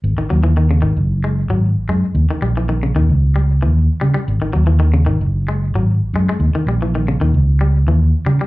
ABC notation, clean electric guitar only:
X:1
M:4/4
L:1/16
Q:"Swing 16ths" 1/4=113
K:D#phr
V:1 name="Clean electric guitar" clef=bass
z D, F, E, D, C, D,2 z G,2 F,2 z G, z | z D, =G, E, D, C, D,2 z G,2 E,2 z G, G, | z D, F, E, D, C, D,2 z G,2 F,2 z G, G, | z D, =G, E, D, C, D,2 z G,2 E,2 z G, G, |]